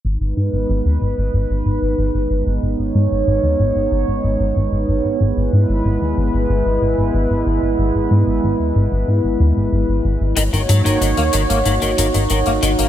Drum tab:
HH |----------------|----------------|----------------|----------------|

HH |xxxxxxxxxxxxxxxx|